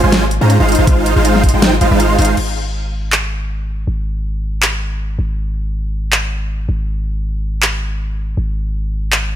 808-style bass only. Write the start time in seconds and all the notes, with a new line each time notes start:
0.04 G#1
0.41 G#2
0.60 G#1
0.79 G#1
0.87 G#1
1.16 G#1
1.54 G#1
1.81 G#1
1.91 G#1
2.19 G#1
2.37 G#1
3.87 G#1
5.19 G#1
6.69 G#1
8.37 G#1